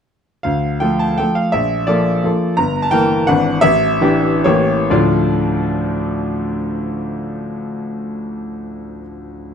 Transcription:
0.43 D2 F5
0.80 F3 A3 A4 G5
0.99 A5
1.18 F3 A3 A4 G5
1.35 F5
1.52 A#1 E5
1.87 F3 A#3 A4 D5
2.24 F3 A#3 A4
2.57 G1 A#5
2.82 A5
2.91 E3 A#3 A#4 G5
3.27 G#1 E3 D4 B4 F#5
3.61 A1 E5
4.01 E3 D4 G4
4.44 A1 E3 A#3 G4 C#5
4.90 D2 A2 F3 A3 D4 F4 D5

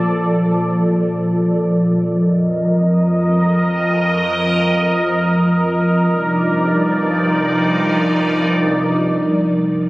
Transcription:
Already playing: A#2 F3 A4 D5
2.15 F2 A#4 D#5
6.11 C2 G2 F3 D#4 D5

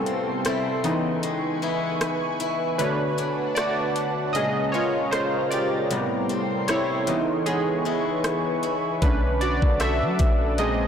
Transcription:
Already playing: A2 C3 G3 B3 C4 A4 G5 C6, downlifter
0.06 C4, closed hi-hat
0.45 G3 C4 E4, cross-stick, closed hi-hat
0.84 C#3 E3 B3 D#4 B4 G#5 C#6, closed hi-hat
1.23 G#3, closed hi-hat
1.62 G#3 B3 E4
2.01 cross-stick, closed hi-hat
2.40 E4, closed hi-hat
2.78 B2 D3 A3 D4 B4 C#5 F#5 A5, closed hi-hat
3.18 D4, closed hi-hat
3.55 A3 D4 F#4 D5, cross-stick, closed hi-hat
3.96 closed hi-hat
4.33 A#2 C#3 G#3 C#4 G#4 A#4 D#5 F5 A#5, closed hi-hat
4.72 G#3 C#4 F4 C#5
5.11 F4 C5, cross-stick, closed hi-hat
5.50 F4 G4 D5, closed hi-hat
5.91 A2 C3 G3 B3 A4 G5 C6, closed hi-hat
6.29 C4, closed hi-hat
6.68 G3 C4 E4 C#5, cross-stick, closed hi-hat
7.07 C#3 E3 B3 D#4 B4 G#5 C#6, closed hi-hat
7.46 G#3 B3 G#4, closed hi-hat
7.85 G#3 B3 E4
8.24 cross-stick, closed hi-hat
8.63 E4, closed hi-hat
9.02 B1 D3 A3 C#4 D4 B4 F#5 A5 D6, kick, closed hi-hat
9.41 D4 F#4 D5, closed hi-hat
9.62 B1, kick
9.80 A3 D4 F#4 A4 E5, cross-stick, closed hi-hat
10.02 F#3
10.19 A#1, kick, closed hi-hat
10.58 A#2 C#3 G#3 C4 G#4 A#4 D#5 G#5 A#5, closed hi-hat

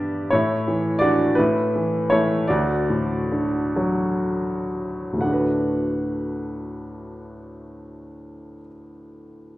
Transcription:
Already playing: G2 D3 B3 D4 G4 D5 E5
0.30 A2 E4 C#5
0.68 E3
0.99 F#4 D5
1.03 D4
1.35 A2 E4 B4
1.75 E3
2.10 A3 E4 C#5
2.48 D2 F#4 D5
2.90 A2
3.31 D3
3.76 F#3
5.13 D2 A2
5.21 A3 D4 F#5
5.28 F#4
5.33 B4

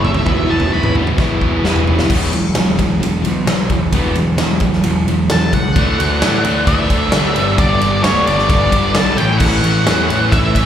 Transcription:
Already playing: F#1 E3 B3
0.03 A3 C#4 E4 A4 C#5 E5, floor tom
0.14 floor tom
0.25 E1 E3 F#3 B3 E4, kick, floor tom
0.29 B4
0.48 E1 F#3 B3 E4 B4 A5
0.60 floor tom
0.72 E1 E3 F#3 B3 E4 B5
0.76 B4
0.83 mid tom
0.94 B3 E4 B4, floor tom
0.99 F#3
1.07 floor tom
1.18 E1 E3 F#3 B3 E4, kick, snare
1.40 E1 F#3 B3 E4, kick
1.63 E1 E3 F#3 B3 E4, snare
1.67 B4
1.76 mid tom
1.86 F#3 B3 E4 B4, floor tom
1.99 snare
2.09 E1 E3 F#3 B3, kick, crash
2.33 E1 E3 F#3, ride
2.55 E1 E3 F#3, snare, ride
2.78 E1 E3 F#3, kick, snare, ride
3.01 E1 E3 F#3, ride
3.22 B1 E3 F#3, ride
3.26 E3
3.45 B1 E3 F#3, snare, ride
3.70 E1 E3 F#3, kick, ride
3.92 E1 E3 F#3 B3, kick, ride
4.14 E1 E3 F#3, ride
4.38 E1 E3 F#3, snare, ride
4.60 E1 E3 F#3, kick, ride
4.73 snare
4.83 E1 E3 F#3, ride
5.08 E1 E3 F#3, ride
5.30 E1 E3 F#3 A5, snare, ride
5.53 C#2 E3 F#3 F#5, kick, ride
5.75 D2 D3 E3 A3 D4, kick, ride
5.99 D2 A3 D4, ride
6.03 E3
6.21 A2 D3 E3 A3 D4, snare, ride
6.44 D2 A3 D4, ride
6.48 E3
6.66 D2 D3 E3 A3 D4 E5, kick, ride
6.88 E3 A3 D4, kick, ride
7.12 D2 D3 E3 A3 D4, snare, ride
7.34 G1 G2 D3 G3 B3 D4, ride
7.57 G1 G2 D3 G3 B3 D4 D5, kick, ride
7.81 G1 G3 B3 D4, ride
8.03 D2 G2 D3 G3 B3 D4 C#5, snare, ride
8.25 G1 G3 B3 D4 D5, ride
8.39 snare
8.48 G1 G2 D3 G3 B3 D4, kick, ride
8.70 B3 D4, kick, ride
8.75 G3
8.94 B1 D3 G3 B3 D4 A5, snare, ride
9.17 A1 E3 A3 C#4 E4 G5, ride
9.21 A2
9.39 A1 A2 E3 A3 F#5, kick, crash
9.43 C#4 E4
9.62 A1 A3 C#4 E4, ride
9.85 E2 A2 E3 A3 C#4 E4, snare, ride
10.08 A1 A3 C#4 E4, ride
10.31 A1 A2 E3 A3 C#4 E5, kick, ride
10.36 E4
10.55 A3 C#4 E4, kick, ride

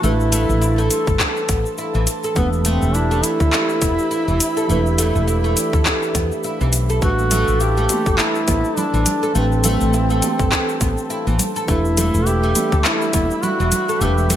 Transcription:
Already playing: G3 A3 D4 A4 A5 C6
0.00 A1 E3 A3 D4 E4, shaker
0.04 G4 B4
0.20 shaker
0.32 A3, closed hi-hat, shaker
0.49 A1, shaker
0.61 E4, shaker
0.78 A3, shaker
0.89 E3 A3 D4 G4, closed hi-hat, shaker
0.93 C6
1.07 G1 A4, kick, shaker
1.20 A4, kick, clap, shaker
1.37 shaker
1.49 A1 B3, kick, closed hi-hat, shaker
1.66 shaker
1.78 E4, shaker
1.94 A1 E3, shaker
2.07 closed hi-hat, shaker
2.24 A4, shaker
2.34 E1 E3 A3 B3 D4 G4 B4 E5 B5, kick, shaker
2.53 shaker
2.65 A3 C4, closed hi-hat, shaker
2.82 E1, shaker
2.94 D4 E4, shaker
3.11 A3, shaker
3.22 E3 A3 D4 E4 G4 D5, closed hi-hat, shaker
3.40 D2 A4, kick, shaker
3.53 A4, clap, shaker
3.69 shaker
3.82 E1 B3, kick, closed hi-hat, shaker
3.99 shaker
4.11 E4, shaker
4.28 E1 E3, shaker
4.40 closed hi-hat, shaker
4.57 A4, shaker
4.67 E1 E3 A3 D4 G4 B4, shaker
4.86 shaker
4.98 A3, closed hi-hat, shaker
5.15 E1, shaker
5.28 E4, shaker
5.44 A3, shaker
5.55 E3 A3 D4 G4 D5, closed hi-hat, shaker
5.73 D2 A4, kick, shaker
5.86 A4, kick, clap, shaker
6.03 shaker
6.15 E2 B3, kick, closed hi-hat, shaker
6.32 shaker
6.44 E4, shaker
6.61 B1 E3, shaker
6.73 closed hi-hat, shaker
6.89 A4, shaker
7.00 A1 E3 G3 A3 D4 F#4 A4 B4 A5, kick, shaker
7.19 high conga, shaker
7.31 A3, closed hi-hat, high bongo, low conga, shaker
7.48 A1, shaker
7.60 E4 G4, shaker
7.77 A3, shaker
7.88 E3 A3 D4 G4 C6, closed hi-hat, high bongo, high conga, shaker
8.06 G1 A4, kick, shaker
8.18 E4 A4, clap, shaker
8.35 shaker
8.48 A1 B3, kick, closed hi-hat, high bongo, high conga, shaker
8.64 high bongo, shaker
8.77 D4 E4, low conga, shaker
8.93 A1 E3, shaker
9.06 closed hi-hat, low conga, shaker
9.23 A4, shaker
9.34 A1 E3 A3 C4 D4 G4, shaker
9.38 B4
9.52 shaker
9.64 A3, closed hi-hat, high bongo, low conga, shaker
9.81 A1, shaker
9.93 E4, shaker
10.10 A3, shaker
10.21 E3 A3 D4 G4 C6, closed hi-hat, high bongo, high conga, shaker
10.39 G1 A4, kick, shaker
10.52 A4, kick, clap, shaker
10.69 shaker
10.81 A1 B3, kick, closed hi-hat, high conga, shaker
10.98 shaker
11.10 E4, shaker
11.27 A1 E3, high conga, shaker
11.39 closed hi-hat, low conga, shaker
11.56 A4, shaker
11.66 E1 E3 G3 A3 D4 E4 G4 B4 E5 B5, kick, shaker
11.85 high conga, shaker
11.97 A3, closed hi-hat, high bongo, low conga, shaker
12.14 E1, shaker
12.26 E4 G4, shaker
12.43 A3, shaker
12.54 E3 G3 A3 D4 D5, closed hi-hat, high bongo, high conga, shaker
12.72 D2 A4, kick, shaker
12.84 E4 A4, clap, shaker
13.02 shaker
13.13 E1 B3, kick, closed hi-hat, high bongo, high conga, shaker
13.31 high bongo, shaker
13.43 E4 F#4, low conga, shaker
13.60 E1 E3, shaker
13.72 closed hi-hat, low conga, shaker
13.89 A4, shaker
14.00 E1 E3 A3 D4 G4, shaker
14.04 B4
14.18 shaker
14.30 A3, closed hi-hat, high bongo, low conga, shaker

